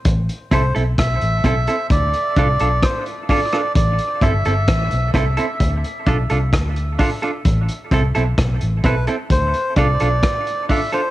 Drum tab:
HH |xxxxxxxxxxxxxxox|xxxxxxxxxxxxxxox|xxxxxxxxxxxxxxox|
SD |----r-------r--r|----r-r-----r---|----r-------r---|
BD |o-o-o-o-o-o-o-o-|o-o-o-o-o-o-o-o-|o-o-o-o-o-o-o-o-|